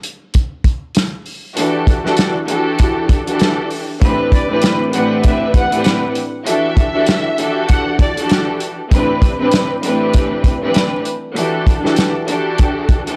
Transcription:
0.03 closed hi-hat medium
0.34 kick medium
0.34 closed hi-hat medium
0.64 kick loud
0.64 closed hi-hat medium
0.95 snare loud
0.95 closed hi-hat medium
1.26 open hi-hat soft
1.55 2.00 E3 loud
1.55 2.00 D4 medium
1.55 2.00 F#4 medium
1.55 2.00 G4 medium
1.55 2.00 A4 loud
1.55 closed hi-hat loud
1.87 kick loud
1.87 closed hi-hat medium
2.03 2.32 E3 loud
2.03 2.32 D4 loud
2.03 2.32 F#4 loud
2.03 2.32 G4 medium
2.03 2.32 A4 loud
2.03 snare soft
2.17 snare loud
2.17 closed hi-hat loud
2.47 3.20 E3 medium
2.47 3.20 D4 medium
2.47 3.20 F#4 loud
2.47 3.20 G4 loud
2.47 3.20 A4 loud
2.47 closed hi-hat medium
2.79 kick medium
2.79 closed hi-hat medium
3.09 kick medium
3.09 closed hi-hat medium
3.27 3.83 E3 loud
3.27 3.83 D4 medium
3.27 3.83 F#4 medium
3.27 3.83 G4 medium
3.27 3.83 A4 loud
3.27 closed hi-hat medium
3.39 snare loud
3.39 closed hi-hat medium
3.70 open hi-hat medium
4.02 4.45 A2 loud
4.02 4.45 E3 medium
4.02 4.46 C4 medium
4.02 4.46 D4 medium
4.02 4.46 G4 medium
4.02 4.46 B4 loud
4.02 kick loud
4.02 closed hi-hat loud
4.32 4.60 D5 medium
4.32 kick loud
4.32 closed hi-hat medium
4.50 4.77 A2 loud
4.50 4.77 E3 medium
4.50 4.78 C4 medium
4.50 4.78 D4 medium
4.50 4.78 G4 medium
4.50 4.78 B4 loud
4.62 snare loud
4.62 closed hi-hat loud
4.93 5.65 A2 loud
4.93 5.65 E3 loud
4.93 5.65 C4 medium
4.93 5.65 D4 loud
4.93 5.65 G4 medium
4.93 5.65 B4 loud
4.93 5.09 F#5 medium
4.93 closed hi-hat medium
5.23 5.51 E5 medium
5.23 kick medium
5.23 closed hi-hat loud
5.54 5.83 F#5 medium
5.54 kick medium
5.54 closed hi-hat medium
5.71 6.12 A2 loud
5.71 6.12 E3 loud
5.71 6.12 C4 medium
5.71 6.12 D4 loud
5.71 6.13 G4 loud
5.71 6.13 B4 loud
5.71 closed hi-hat medium
5.84 snare loud
5.84 closed hi-hat medium
6.15 closed hi-hat medium
6.45 6.89 E3 loud
6.45 6.90 D4 medium
6.45 6.90 F#4 medium
6.45 6.90 G4 medium
6.45 6.90 A4 loud
6.45 7.64 E5 loud
6.45 closed hi-hat loud
6.77 kick loud
6.77 closed hi-hat medium
6.93 7.22 E3 loud
6.93 7.22 D4 loud
6.93 7.22 F#4 loud
6.93 7.22 G4 medium
6.93 7.22 A4 loud
7.07 snare loud
7.07 closed hi-hat medium
7.37 8.09 E3 loud
7.37 8.09 D4 medium
7.37 8.10 F#4 loud
7.37 8.10 G4 medium
7.37 8.10 A4 loud
7.37 closed hi-hat medium
7.69 7.96 F#5 loud
7.69 kick medium
7.69 closed hi-hat loud
7.99 8.27 D5 medium
7.99 kick medium
7.99 closed hi-hat medium
8.17 8.73 E3 loud
8.17 8.73 D4 medium
8.17 8.73 F#4 medium
8.17 8.73 G4 medium
8.17 8.73 A4 loud
8.17 closed hi-hat medium
8.29 snare loud
8.29 closed hi-hat medium
8.60 closed hi-hat medium
8.91 9.35 A2 loud
8.91 9.35 E3 medium
8.91 9.35 C4 medium
8.91 9.36 D4 medium
8.91 9.36 G4 medium
8.91 9.36 B4 loud
8.91 kick loud
8.91 closed hi-hat loud
9.22 kick loud
9.22 closed hi-hat medium
9.39 9.67 A2 loud
9.39 9.67 E3 loud
9.39 9.67 C4 medium
9.39 9.68 D4 medium
9.39 9.68 G4 medium
9.39 9.68 B4 loud
9.51 snare loud
9.51 closed hi-hat loud
9.83 10.55 A2 loud
9.83 10.55 E3 loud
9.83 10.55 C4 medium
9.83 10.55 D4 loud
9.83 10.55 G4 medium
9.83 10.55 B4 loud
9.83 closed hi-hat medium
10.13 kick medium
10.13 closed hi-hat medium
10.44 kick medium
10.44 closed hi-hat medium
10.61 11.02 A2 loud
10.61 11.02 E3 loud
10.61 11.02 C4 loud
10.61 11.02 D4 loud
10.61 11.02 G4 medium
10.61 11.02 B4 loud
10.74 snare loud
10.74 closed hi-hat medium
11.05 closed hi-hat medium
11.35 11.79 E3 loud
11.35 11.79 D4 medium
11.35 11.80 F#4 medium
11.35 11.80 G4 medium
11.35 11.80 A4 loud
11.35 closed hi-hat loud
11.67 kick loud
11.67 closed hi-hat medium
11.83 12.11 E3 loud
11.83 12.12 D4 medium
11.83 12.12 F#4 loud
11.83 12.12 G4 medium
11.83 12.12 A4 loud
11.83 snare soft
11.96 snare loud
11.96 closed hi-hat loud
12.27 12.99 E3 medium
12.27 12.99 D4 medium
12.27 12.99 F#4 loud
12.27 12.99 G4 loud
12.27 13.00 A4 loud
12.27 closed hi-hat medium
12.58 kick medium
12.58 closed hi-hat medium
12.89 kick medium
12.89 closed hi-hat medium
13.06 13.16 E3 loud
13.06 13.16 D4 medium
13.06 13.16 F#4 medium
13.06 13.16 G4 loud
13.06 13.16 A4 loud
13.06 closed hi-hat medium

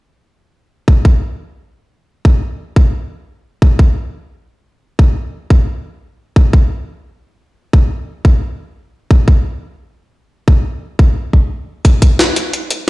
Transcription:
0.88 kick loud
1.05 kick loud
2.25 kick loud
2.76 kick loud
3.62 kick loud
3.79 kick loud
4.99 kick loud
5.50 kick loud
6.36 kick loud
6.53 kick loud
7.73 kick loud
8.25 kick loud
9.11 kick loud
9.28 kick loud
10.48 kick loud
10.99 kick loud
11.33 kick medium
11.85 kick loud
11.85 closed hi-hat medium
12.02 kick loud
12.02 closed hi-hat medium
12.19 snare loud
12.19 closed hi-hat medium
12.36 closed hi-hat medium
12.53 closed hi-hat medium
12.71 closed hi-hat medium

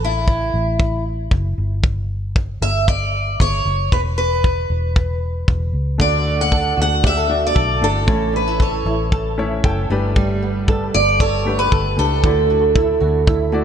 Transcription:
0.00 0.50 A1 medium
0.04 1.03 E4 medium
0.28 kick medium
0.54 1.28 A1 medium
0.80 kick loud
1.31 1.56 F#1 medium
1.31 kick loud
1.58 2.58 G1 medium
1.84 kick loud
2.36 kick medium
2.62 3.36 G1 medium
2.62 2.88 E5 medium
2.88 3.41 D5 medium
2.88 kick loud
3.40 3.64 G1 medium
3.40 3.94 C#5 medium
3.40 kick loud
3.65 3.89 F#1 medium
3.92 4.66 E1 medium
3.92 4.00 B4 medium
3.92 kick loud
4.18 5.18 B4 medium
4.44 kick medium
4.70 5.44 E1 medium
4.96 kick loud
5.48 5.72 E1 medium
5.48 kick medium
5.73 5.97 C#2 medium
5.98 6.74 D2 medium
5.98 8.08 D3 medium
5.98 6.77 A3 medium
5.98 6.78 D4 medium
5.98 6.78 F#4 medium
5.98 6.79 D5 medium
5.98 6.41 D5 medium
5.98 kick loud
6.27 6.75 F#4 medium
6.41 6.80 F#5 medium
6.52 7.03 A4 medium
6.52 kick medium
6.77 7.52 D2 medium
6.77 7.28 F#4 medium
6.82 7.04 F#5 medium
7.03 7.17 G4 medium
7.03 7.45 E5 medium
7.03 kick loud
7.17 7.54 A4 soft
7.28 7.68 A3 medium
7.28 7.69 D4 medium
7.28 8.13 F#4 medium
7.28 7.69 F#4 medium
7.28 7.69 D5 medium
7.47 7.85 D5 medium
7.55 7.80 B1 medium
7.55 8.59 A4 medium
7.55 kick loud
7.81 8.05 G1 medium
7.81 8.01 A3 medium
7.81 8.13 D4 medium
7.81 8.01 D4 medium
7.81 8.02 F#4 medium
7.81 8.36 A4 medium
7.81 8.02 D5 medium
8.07 8.82 A1 medium
8.07 9.95 A2 medium
8.07 8.86 A3 medium
8.07 8.86 C#4 medium
8.07 8.87 E4 medium
8.07 8.87 C#5 medium
8.07 kick loud
8.33 8.47 D4 medium
8.33 8.62 B4 medium
8.47 8.85 E4 soft
8.59 9.12 A4 medium
8.59 9.35 C#5 medium
8.59 kick medium
8.86 9.60 A1 medium
8.86 9.38 E4 medium
9.12 9.64 A4 medium
9.12 kick loud
9.38 9.77 A3 medium
9.38 9.77 C#4 medium
9.38 9.96 E4 medium
9.38 9.78 E4 medium
9.38 9.78 C#5 medium
9.38 9.62 E5 medium
9.64 9.88 F#1 medium
9.64 10.19 A4 medium
9.64 10.13 G5 medium
9.64 kick loud
9.90 10.90 G1 medium
9.90 10.14 G3 medium
9.90 10.73 A3 medium
9.90 10.74 D4 medium
9.90 10.74 G4 medium
9.90 10.74 B4 medium
10.16 12.24 G3 medium
10.16 kick loud
10.43 10.94 B3 medium
10.68 11.21 A4 medium
10.68 kick medium
10.94 11.68 G1 medium
10.94 11.46 B3 medium
10.94 11.18 D5 medium
11.20 11.71 A4 medium
11.20 11.60 C#5 loud
11.20 kick loud
11.45 11.85 A3 medium
11.45 12.30 B3 medium
11.45 11.85 D4 medium
11.45 11.85 G4 medium
11.45 11.86 B4 medium
11.59 11.98 B4 medium
11.72 11.96 G1 medium
11.72 12.75 A4 medium
11.72 kick loud
11.96 12.22 C#2 medium
11.96 12.17 A3 medium
11.96 12.17 D4 medium
11.96 12.78 D4 medium
11.96 12.17 G4 medium
11.96 13.64 A4 medium
11.96 12.18 B4 medium
12.23 12.98 D2 medium
12.23 13.64 D3 medium
12.23 13.02 A3 medium
12.23 13.03 E4 medium
12.23 13.03 F#4 medium
12.23 13.03 D5 medium
12.23 kick loud
12.50 13.00 F#4 medium
12.75 13.26 E4 medium
12.75 kick medium
13.00 13.64 D2 medium
13.00 13.52 F#4 medium
13.27 13.64 E4 medium
13.27 kick loud
13.52 13.64 A3 medium
13.52 13.64 E4 medium
13.52 13.64 F#4 medium
13.52 13.64 D5 medium

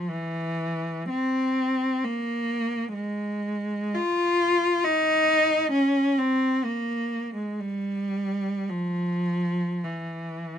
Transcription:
0.09 1.10 E3 medium
1.09 2.03 C4 medium
2.04 2.94 A#3 medium
2.94 3.93 G#3 medium
3.95 4.84 F4 medium
4.84 5.73 D#4 medium
5.72 6.17 C#4 medium
6.19 6.64 C4 medium
6.65 7.35 A#3 medium
7.35 7.59 G#3 medium
7.60 8.70 G3 medium
8.70 9.85 F3 medium
9.85 10.59 E3 soft

